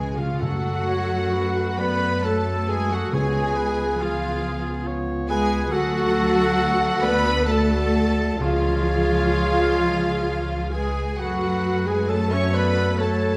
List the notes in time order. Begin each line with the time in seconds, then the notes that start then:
Already playing: C#2 C#3 G#3 G#4 B4 G#5
0.00 C#3
0.09 C#3
0.16 C#3 F3 F4 G#4 F5
0.25 C#3
0.33 C#3
0.41 F#2 F#3 A3 F#4 A4 F#5
0.88 C#5
1.34 B4
1.78 B3 B4 D5 B5
2.23 A3 F#4 A4 C#5 A5
2.68 G#3 G#4 B4 G#5
2.90 F#3 F#4 A4 F#5
3.12 C#2 C#3 G#3 B3 F4 G#4 B4 C#5 G#5
3.56 B4
4.00 F3 B3 F4 G#4 F5
4.87 C#5
5.29 G#3 G#4 B4 G#5
5.72 D2 F#3 A3 F#4 A4 F#5
7.02 B3 B4 D5 B5
7.46 A3 F#4 A4 D5 A5
8.39 C#2 C#3 F3 G#3 F4 G#4 C#5 F5
10.72 G#3 G#4 B4 G#5
11.19 F#2 F#3 A3 F#4 A4 B4 F#5
11.86 G#3 G#4 B4 G#5
12.09 A3 A4 C#5 A5
12.31 C#4 C#5 E5 C#6
12.53 B3 B4 D5 B5
12.97 A3 A4 C#5 A5